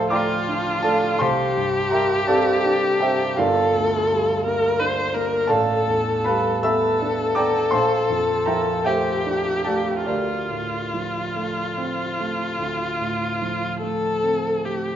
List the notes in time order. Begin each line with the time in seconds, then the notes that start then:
Already playing: D2 A2 F3 A3 D4 G4 A4 C5 D5 E5 F5 G5 A5 C6
0.10 A3 F4 D5 G5 A#5 D6
0.48 D4
0.82 A3 A4 D5 F5 A5
1.19 C2 G4 C5 F5 A5 C6
1.57 G2
1.91 G3 A#4 E5 G5 A#5
2.27 C4 A4 D5 F5 A5
2.65 D4
3.00 C4 G4 C5 E5 G5
3.37 G1 F4 A4 A#4 D5 F5
3.75 D2
4.11 G3
4.46 A#3 A#4
4.79 D4 C5
5.14 A#3 A#4
5.47 A1 A4 D5 F5 A5
5.87 E2
6.24 G3 B4 F5 A5 B5
6.63 B3 A4 E5 A5 B5 E6
7.01 D4
7.35 B3 D5 G5 A#5 D6
7.71 A#1 C5 F5 A5 C6
8.10 F2
8.46 F3 A#4 E5 G5 A#5
8.85 A3 G4 C5 E5 G5
9.26 D4
9.65 A3 A4 D5 F5 A5
10.06 D2 F4 G4 A#4 D5
10.50 A2
10.94 F3
11.36 A3
11.77 C4
12.19 A3
12.59 D2
13.01 A2
13.42 F3
13.82 A3 A4
14.23 C4
14.65 A3 G4